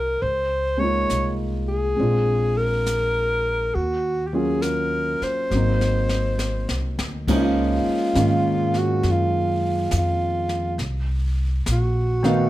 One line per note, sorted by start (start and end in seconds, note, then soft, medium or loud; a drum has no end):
0.00 0.18 C2 medium
0.00 0.21 A#3 soft
0.00 0.22 C4 soft
0.00 0.22 D#4 soft
0.00 0.22 F#4 soft
0.00 0.23 A#4 medium
0.21 1.06 C#2 medium
0.21 0.81 C5 medium
0.21 brush sweep soft
0.77 1.95 G#3 soft
0.77 1.97 A#3 soft
0.77 1.98 D#4 soft
0.77 1.32 C#5 medium
0.82 1.99 F4 soft
1.10 1.94 C2 medium
1.10 snare soft
1.10 hi-hat pedal medium
1.68 2.59 G#4 medium
1.96 3.71 A#1 medium
1.96 3.73 G#3 soft
1.96 3.74 C4 soft
1.96 3.75 D4 soft
1.96 brush sweep soft
2.01 3.76 F4 soft
2.57 3.76 A#4 medium
2.86 snare soft
2.86 hi-hat pedal medium
3.73 5.17 D#2 medium
3.73 4.29 F#4 medium
3.73 brush sweep soft
4.27 4.36 G4 soft
4.33 5.49 F#3 soft
4.33 5.50 A#3 soft
4.33 5.51 C#4 soft
4.33 5.51 F4 soft
4.33 4.63 G#4 medium
4.62 5.25 A#4 medium
4.62 snare soft
4.62 hi-hat pedal soft
5.22 6.99 C5 medium
5.22 muted upright bass stroke soft
5.22 snare soft
5.50 6.64 G#1 medium
5.50 7.27 F#3 soft
5.50 7.28 A#3 soft
5.50 7.29 C4 soft
5.50 snare soft
5.56 7.29 D#4 medium
5.81 snare soft
6.09 snare medium
6.39 snare medium
6.39 hi-hat pedal soft
6.69 6.96 C2 medium
6.69 snare medium
6.98 7.25 D2 medium
6.98 snare medium
7.27 7.82 C#2 medium
7.27 7.80 F3 medium
7.27 7.81 G#3 medium
7.27 7.81 A#3 medium
7.27 7.80 C#4 medium
7.27 7.81 D#4 medium
7.27 brush sweep medium
7.27 kick medium
7.27 snare soft
7.27 crash medium
7.34 8.79 F4 medium
7.85 muted upright bass stroke soft
8.15 9.01 G#2 medium
8.15 9.50 D#3 medium
8.15 9.50 G#3 soft
8.15 9.50 A#3 soft
8.15 9.50 C#4 medium
8.15 9.50 F5 medium
8.15 snare medium
8.15 hi-hat pedal soft
8.74 9.12 F#4 medium
8.74 snare soft
9.03 9.89 F#2 medium
9.03 brush sweep soft
9.03 snare soft
9.10 9.95 F4 medium
9.91 10.77 F2 medium
9.91 snare medium
9.91 hi-hat pedal medium
9.97 10.78 F4 medium
10.49 snare soft
10.78 11.63 C2 medium
10.78 brush sweep soft
10.78 snare soft
11.66 12.50 A#1 medium
11.66 snare medium
11.66 hi-hat pedal soft
11.72 12.50 F#4 medium
12.23 12.50 D#3 medium
12.23 12.50 A3 medium
12.23 12.50 B3 medium
12.23 12.50 D#4 medium
12.23 12.50 F5 medium
12.23 snare soft